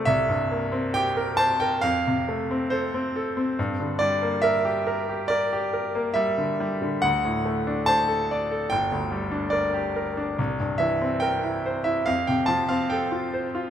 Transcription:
\new Staff \with { instrumentName = "Grand piano" } { \time 4/4 \key f \major \tempo 4 = 70 << { e''4 g''8 a''16 g''16 f''4 c''4 | r8 d''8 e''4 d''4 e''4 | fis''4 a''4 g''4 d''4 | r8 e''8 g''8. e''16 f''16 g''16 a''16 f''16 g''4 | } \\ { c,16 g,16 bes16 c'16 g'16 bes'16 c''16 bes'16 f,16 c16 a16 c'16 a'16 c'16 a'16 c'16 | g,16 d16 g16 bes16 bes'16 g'16 bes'16 g'16 bes'16 g'16 bes'16 bes16 g16 d16 g16 d16 | d,16 a,16 a16 d'16 c''16 a'16 d''16 a'16 g,,16 d,16 g16 d'16 bes'16 g'16 bes'16 d'16 | c,16 g,16 e16 c'16 bes'16 e'16 c''16 e'16 f,16 c16 f16 c'16 a'16 f'16 c''16 f'16 | } >> }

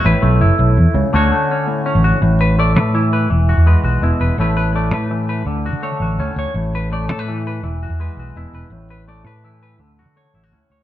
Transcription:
<<
  \new Staff \with { instrumentName = "Clean electric guitar" } { \time 12/8 \key a \major \tempo 4. = 111 << { b'4 e'2 <a cis' fis' cis''>4 cis'4 cis'8 fis'8 | r8 b'8 d''8 b'8 e'8 b'8 r8 fis'8 b'8 fis'8 e'8 b'8 | <a e' b'>8 b'8 d''8 b'4 b'8 r8 fis'8 cis''8 fis'8 cis'8 cis''8 | r8 b'8 d''8 a'16 b'8. b'8 r8 fis'8 b'8 fis'8 e'8 b'8 |
r8 b'8 d''8 b'8 e'8 b'8 r8 fis'8 cis''8 e'16 fis'16 cis'8 cis''8 | } \\ { a,8 a4 a,8 r8 cis8 d8 a4 a,4. | a,4 a4 e4 e4 gis4 b,4 | a,4 a4 e4 d4 a4 a,4 | a,4 a4 e4 e4 gis4 b,4 |
a,4 a4 e4 d4 a4 a,4 | } >> }
  \new Staff \with { instrumentName = "Fingered electric bass" } { \clef bass \time 12/8 \key a \major a,,16 r16 b,,8 fis,,16 r16 b,,8 e,16 r16 cis,16 r16 d,8 r4. r16 a,,8 r16 | a,,4. a,4. e,,8. e,8 r16 b,,8 e,,16 r16 e,,16 r16 | a,,4. a,4. d,8. d8 r16 a,,8 d,16 r16 d,16 r16 | a,,4. a,4. e,,8. e,8 r16 b,,8 e,,16 r16 e,,16 r16 |
a,,4. a,4. d,8. d8 r16 a,,8 d,16 r16 d,16 r16 | }
>>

